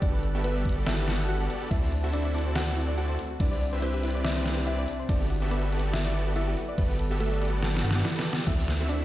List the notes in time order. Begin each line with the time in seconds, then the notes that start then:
Already playing: G3 D4 A4 B4
0.02 G1 B3 D4 F#4 G4 A4 D5, kick, closed hi-hat
0.14 B4
0.23 A4, closed hi-hat
0.35 B3 F#4 G4 A4 E5
0.44 B3 F#4 B4, closed hi-hat
0.56 D5
0.65 B3 F#4 G4 A4 D5, kick, closed hi-hat
0.69 closed hi-hat
0.72 closed hi-hat
0.77 B4
0.87 E4 A4 E5, snare, closed hi-hat
0.98 B3 F#4 G4 A4 D5
1.08 B3 F#4 G4 A4 F#5, snare, closed hi-hat
1.19 D5
1.29 F#4 A4 F#5, closed hi-hat
1.40 B3 F#4 G4 A4 D5
1.50 B4, open hi-hat
1.61 G4
1.71 D2 D3 C4 E4 F#4 A4 D5 E5, kick, closed hi-hat, crash
1.83 C5
1.92 A4, closed hi-hat
2.04 C4 E4 F#4 A4 E5
2.13 D4 E4 D5, closed hi-hat
2.25 D5
2.34 C4 E4 F#4 A4 D5, closed hi-hat
2.38 closed hi-hat
2.41 closed hi-hat
2.46 C5
2.56 F#4 A4 F#5, snare, closed hi-hat, crash
2.67 C4 E4 F#4 A4 D5
2.77 E4, closed hi-hat
2.88 D5
2.98 C4 E4 F#4 A4 D5 F#5, closed hi-hat
3.09 C5
3.19 A4, open hi-hat
3.30 F#4
3.40 C2 C3 C4 D4 E4 G4 B4 D5, kick, closed hi-hat, crash
3.51 D5
3.61 D5, closed hi-hat
3.73 C4 E4 G4 B4 C5 E5
3.82 C4 B4 C5, closed hi-hat
3.94 G4
4.03 C4 E4 G4 B4 D5, closed hi-hat
4.07 closed hi-hat
4.10 closed hi-hat
4.15 D5
4.24 E4 D5 E5, snare, closed hi-hat, crash
4.36 C4 E4 G4 B4 C5 D5
4.46 B4, snare, closed hi-hat
4.57 G4
4.67 C4 E4 G4 B4 D5 E5, closed hi-hat
4.78 D5
4.88 D5, open hi-hat
4.99 C5
5.09 G1 F#3 B3 D4 F#4 G4 A4 B4 D5, kick, closed hi-hat, crash
5.21 G4
5.30 F#4, closed hi-hat
5.42 B3 F#4 G4 A4 D5 E5
5.51 B3 B4 D5, closed hi-hat
5.63 B4
5.72 B3 F#4 G4 A4 D5, closed hi-hat
5.76 closed hi-hat
5.79 closed hi-hat
5.84 G4
5.93 E4 F#4 E5, snare, closed hi-hat, crash
6.05 B3 F#4 G4 A4 D5
6.15 D5, closed hi-hat
6.26 B4
6.36 B3 E4 F#4 G4 A4 D5 E5, closed hi-hat
6.47 G4
6.57 F#4, open hi-hat
6.68 D5
6.78 G1 B3 F#4 G4 A4 B4 D5, kick, closed hi-hat, crash
6.89 B4
6.99 A4, closed hi-hat
7.11 B3 F#4 G4 A4 E5
7.20 A3 F#4 A4, closed hi-hat
7.32 D5
7.41 B3 F#4 G4 A4 D5, closed hi-hat
7.45 closed hi-hat
7.48 closed hi-hat
7.53 B4
7.62 F#3 F#4 A4, snare, closed hi-hat, crash
7.74 B3 F#4 G4 A4 D5, snare
7.84 G2 B3 F#4 G4 A4 F#5, closed hi-hat
7.91 snare
7.95 D5
8.05 E3 E4 D5, snare, closed hi-hat
8.16 B3 F#4 G4 A4 B4 D5, snare
8.26 A4, open hi-hat
8.33 snare
8.37 G4
8.47 D2 C4 E4 F#4 A4 D5 E5, kick, closed hi-hat, crash
8.68 snare, closed hi-hat
8.80 C4 E4 F#4 A4 E5
8.89 D4 D5, closed hi-hat